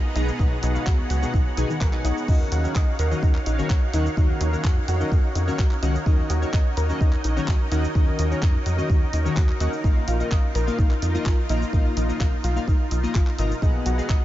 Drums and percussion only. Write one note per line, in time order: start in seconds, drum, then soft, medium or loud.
0.16 open hi-hat loud
0.16 shaker medium
0.28 shaker soft
0.39 kick loud
0.39 shaker soft
0.63 open hi-hat loud
0.63 shaker medium
0.76 shaker soft
0.87 kick loud
0.87 clap loud
0.87 shaker soft
1.10 open hi-hat loud
1.10 shaker medium
1.23 shaker soft
1.34 kick loud
1.34 shaker soft
1.57 open hi-hat loud
1.57 shaker medium
1.70 shaker soft
1.81 kick loud
1.81 clap loud
1.81 shaker soft
1.93 clap soft
2.05 open hi-hat loud
2.05 shaker medium
2.18 shaker soft
2.28 kick loud
2.28 crash medium
2.28 shaker soft
2.52 open hi-hat loud
2.52 shaker medium
2.65 shaker soft
2.75 kick loud
2.75 clap loud
2.75 shaker soft
2.99 open hi-hat loud
2.99 shaker medium
3.12 shaker soft
3.23 kick loud
3.23 shaker soft
3.35 clap soft
3.46 open hi-hat loud
3.46 shaker medium
3.59 shaker soft
3.70 kick loud
3.70 clap loud
3.70 shaker soft
3.94 open hi-hat loud
3.94 shaker medium
4.06 shaker soft
4.17 kick loud
4.17 shaker soft
4.41 open hi-hat loud
4.41 shaker medium
4.54 shaker soft
4.64 kick loud
4.64 clap loud
4.64 shaker soft
4.88 open hi-hat loud
4.88 shaker medium
5.01 shaker soft
5.12 kick loud
5.12 shaker soft
5.35 open hi-hat loud
5.35 shaker medium
5.48 shaker soft
5.59 kick loud
5.59 clap loud
5.59 shaker soft
5.71 clap soft
5.83 open hi-hat loud
5.83 shaker medium
5.95 shaker soft
6.06 kick loud
6.06 shaker soft
6.30 open hi-hat loud
6.30 shaker medium
6.43 shaker soft
6.53 kick loud
6.53 clap loud
6.53 shaker soft
6.77 open hi-hat loud
6.77 shaker medium
6.90 shaker soft
7.01 kick loud
7.01 shaker soft
7.13 clap soft
7.24 open hi-hat loud
7.24 shaker medium
7.37 shaker soft
7.48 kick loud
7.48 clap loud
7.48 shaker soft
7.72 open hi-hat loud
7.72 shaker medium
7.84 shaker soft
7.95 kick loud
7.95 shaker soft
8.19 open hi-hat loud
8.19 shaker medium
8.32 shaker soft
8.42 kick loud
8.42 clap loud
8.42 shaker soft
8.66 open hi-hat loud
8.66 shaker medium
8.79 shaker soft
8.90 kick loud
8.90 shaker soft
9.13 open hi-hat loud
9.13 shaker medium
9.26 shaker soft
9.37 kick loud
9.37 clap loud
9.37 shaker soft
9.49 clap soft
9.60 open hi-hat loud
9.60 shaker medium
9.73 shaker soft
9.84 kick loud
9.84 shaker soft
10.08 open hi-hat loud
10.08 shaker medium
10.20 shaker soft
10.31 kick loud
10.31 clap loud
10.31 shaker soft
10.55 open hi-hat loud
10.55 shaker medium
10.68 shaker soft
10.79 kick loud
10.79 shaker soft
10.91 clap soft
11.02 open hi-hat loud
11.02 shaker medium
11.15 shaker soft
11.26 kick loud
11.26 clap loud
11.26 shaker soft
11.49 open hi-hat loud
11.49 shaker medium
11.62 shaker soft
11.73 kick loud
11.73 shaker soft
11.97 open hi-hat loud
11.97 shaker medium
12.10 shaker soft
12.20 kick loud
12.20 clap loud
12.20 shaker soft
12.44 open hi-hat loud
12.44 shaker medium
12.57 shaker soft
12.68 kick loud
12.68 shaker soft
12.91 open hi-hat loud
12.91 shaker medium
13.04 shaker soft
13.15 kick loud
13.15 clap loud
13.15 shaker soft
13.27 clap soft
13.39 open hi-hat loud
13.39 shaker medium
13.51 shaker soft
13.62 kick loud
13.62 shaker soft
13.86 open hi-hat loud
13.86 shaker medium
13.99 shaker soft
14.09 kick loud
14.09 clap loud
14.09 shaker soft